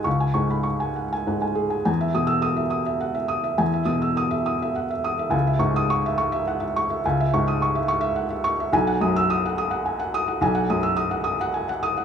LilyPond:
<<
  \new Staff \with { instrumentName = "Felt piano" } { \time 3/4 \key e \major \tempo 4 = 105 << { r2. | r8. e'''16 r2 | r2. | r8. dis'''16 r2 |
r2. | r8. e'''16 r2 | r2. | } \\ { <gis'' cis'''>16 gis''16 cis'''16 b''16 cis'''16 gis''16 fis''16 gis''16 fis''16 gis''16 gis'16 gis''16 | gis''16 e''16 dis'''8 dis'''16 e''16 dis'''16 e''16 fis''16 e''16 dis'''16 e''16 | gis''16 e''16 dis'''16 e'''16 dis'''16 e''16 dis'''16 e''16 fis''16 e''16 dis'''16 e''16 | gis''16 e''16 cis'''8 cis'''16 e''16 cis'''16 e''16 fis''16 e''16 cis'''16 e''16 |
gis''16 e''16 cis'''16 dis'''16 cis'''16 e''16 cis'''16 e''16 fis''16 e''16 cis'''16 e''16 | gis''16 fis''16 dis'''8 dis'''16 fis''16 dis'''16 fis''16 gis''16 fis''16 dis'''16 fis''16 | gis''16 fis''16 dis'''16 e'''16 dis'''16 fis''16 dis'''16 fis''16 gis''16 fis''16 dis'''16 fis''16 | } >> }
  \new Staff \with { instrumentName = "Felt piano" } { \clef bass \time 3/4 \key e \major cis,8 gis,4 r8 gis,4 | e,8 b,4 r4. | e,8 b,4 r4. | cis,8 gis,4 r4. |
cis,8 gis,4 r4. | b,,8 fis,4 r4. | b,,8 fis,4 r4. | }
>>